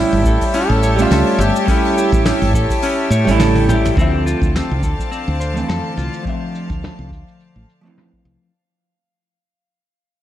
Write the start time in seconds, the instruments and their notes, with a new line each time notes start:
Already playing: hollow-body jazz guitar G3 A3 C#4 E4, clean electric guitar C#4, string section G4 C#5 E5 A5, synth texture G5
0.00 flugelhorn E4
0.13 fretless electric bass G1, open hi-hat
0.25 fretless electric bass A1, clean electric guitar A4, kick, cabasa
0.41 kick, open hi-hat, cabasa
0.54 clean electric guitar C#4, flugelhorn A4, open hi-hat, cabasa
0.70 fretless electric bass A1
0.83 clean electric guitar C#5, cabasa
0.96 hollow-body jazz guitar G3 A3 C#4, open hi-hat, cabasa
1.01 flugelhorn F4, hollow-body jazz guitar E5
1.11 fretless electric bass C#2, clean electric guitar A4, snare, open hi-hat, cabasa
1.26 open hi-hat
1.39 fretless electric bass G1, clean electric guitar G4, flugelhorn G4, cabasa
1.56 cabasa
1.66 hollow-body jazz guitar G3 A3 C#4, clean electric guitar C#4, kick, open hi-hat, cabasa
1.71 hollow-body jazz guitar E4
1.85 open hi-hat
1.97 clean electric guitar G4, cabasa
2.12 fretless electric bass A1, kick, cabasa
2.26 clean electric guitar C#4, snare, open hi-hat, cabasa
2.42 fretless electric bass G1, open hi-hat
2.54 fretless electric bass A1, clean electric guitar A4, kick, cabasa
2.70 kick, open hi-hat, cabasa
2.82 clean electric guitar C#4, open hi-hat, cabasa
3.10 fretless electric bass A2, clean electric guitar C#5, cabasa
3.25 fretless electric bass A1, hollow-body jazz guitar G3 A3, open hi-hat, cabasa
3.29 hollow-body jazz guitar C#4 E4
3.40 clean electric guitar A4, snare, open hi-hat, high tom, cabasa
3.55 open hi-hat, high tom
3.69 clean electric guitar G4, mid tom, cabasa
3.85 mid tom, open hi-hat, cabasa
3.95 fretless electric bass D2, string section D3 C5 D5 A5, hollow-body jazz guitar F3 A3, clean electric guitar C4, synth texture F5, kick, cabasa
3.99 hollow-body jazz guitar C4 E5
4.26 clean electric guitar F4, cabasa
4.42 fretless electric bass D2, kick, cabasa
4.55 clean electric guitar C4, snare, cabasa
4.71 fretless electric bass C2
4.83 fretless electric bass D2, clean electric guitar A4, kick, cabasa
4.99 kick, cabasa
5.11 clean electric guitar C4, cabasa
5.28 fretless electric bass D2
5.40 clean electric guitar C5, cabasa
5.54 hollow-body jazz guitar F3 A3, cabasa
5.58 hollow-body jazz guitar E3 C4
5.69 fretless electric bass F2, clean electric guitar A4, snare, cabasa
5.97 fretless electric bass C2, clean electric guitar F4, cabasa
6.14 cabasa
6.23 hollow-body jazz guitar F3 A3 C4, kick, cabasa
6.29 hollow-body jazz guitar E5
6.55 cabasa
6.70 fretless electric bass D2, kick, cabasa
6.84 snare, cabasa
6.99 fretless electric bass C2
7.11 fretless electric bass D2, kick, cabasa
7.28 cabasa
7.40 cabasa
7.56 fretless electric bass A1
7.69 cabasa
7.81 hollow-body jazz guitar F3 A3 C4
7.86 hollow-body jazz guitar E3, cabasa
7.98 snare
8.13 kick
8.25 fretless electric bass C2, cabasa